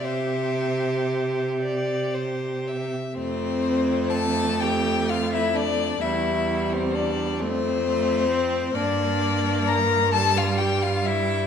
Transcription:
X:1
M:6/8
L:1/16
Q:3/8=43
K:F
V:1 name="Violin"
e6 z6 | c4 a2 g2 f e d2 | e3 c d2 c6 | d4 b2 a f g f e2 |]
V:2 name="Violin"
c6 d2 c2 e2 | C4 A2 G2 F E D2 | E3 C D2 C6 | D4 B2 A F G F E2 |]
V:3 name="Viola"
G12 | A,12 | G,6 A,2 A,2 C2 | B,6 G,6 |]
V:4 name="Cello" clef=bass
C,12 | F,,12 | E,,6 F,,6 | G,,12 |]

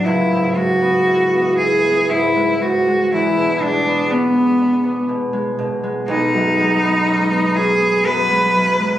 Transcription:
X:1
M:3/4
L:1/16
Q:1/4=60
K:Emix
V:1 name="Cello"
E2 F4 G2 E2 F2 | E2 D2 B,4 z4 | [K:Cblyd] ^D6 ^G2 =B4 |]
V:2 name="Harp" clef=bass
[C,,F,E] G,, G, B, E B, E B, G,, G, G,, G, | E,, B,, G, B, D B, D B, B,, G, B,, G, | [K:Cblyd] =B,,, ^F,, ^G, =B, ^C B, C B, F,, G, F,, G, |]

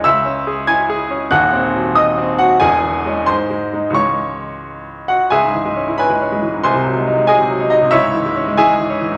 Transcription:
X:1
M:6/8
L:1/16
Q:3/8=92
K:C#m
V:1 name="Grand piano"
[ee']6 [gg']6 | [_g_g']6 [_e_e']2 z2 [_Gg]2 | [Gg]6 [^B^b]6 | [cc']8- [cc']2 [Ff]2 |
[Geg]6 [Bgb]6 | [^Bg^b]6 [Gdg]4 [Dd]2 | [Ece]6 [Geg]6 |]
V:2 name="Grand piano" clef=bass
C,,2 C2 G2 E2 G2 C2 | [_E,,,_E,,]2 =C2 _G,2 _E2 C2 G,2 | [E,,,E,,]2 E,2 [G,C]2 G,,2 G,2 [G,D]2 | [C,,E,G,C]12 |
C,, G,, E, G, C E C G, C G, E, G,, | ^B,,, ^B,, F, G, D G, F, B,, F, D F, B,, | C,, G,, E, G, C G, E, G,, E, C E, G,, |]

